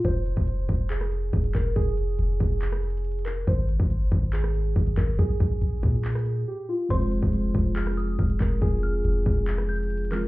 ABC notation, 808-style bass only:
X:1
M:4/4
L:1/16
Q:1/4=140
K:Fm
V:1 name="808-style bass" clef=bass
F,,,3 F,,,3 F,,,6 F,,,2 F,,,2 | F,,,4 F,,,2 F,,,8- F,,,2 | A,,,3 A,,,2 G,,, A,,,6 A,,,2 A,,,2 | B,,,2 B,,,2 B,,,2 B,,6 z4 |
F,,,3 F,,,3 F,,,6 F,,,2 F,,,2 | F,,,4 F,,,2 F,,,8- F,,,2 |]